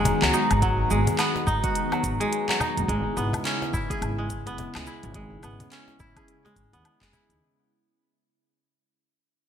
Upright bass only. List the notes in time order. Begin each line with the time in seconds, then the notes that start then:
Already playing: F#1
0.22 C#2
0.51 G#1
0.91 G#1
1.47 G#2
2.03 G#1
2.77 F#1
2.88 G#1
3.17 G#1
3.73 G#2
4.02 G#1
4.47 F#1
4.75 C#2
5.04 G#1
5.43 G#1
6.00 G#2
6.56 G#1
6.73 D#2
7.01 F#1
7.29 D#2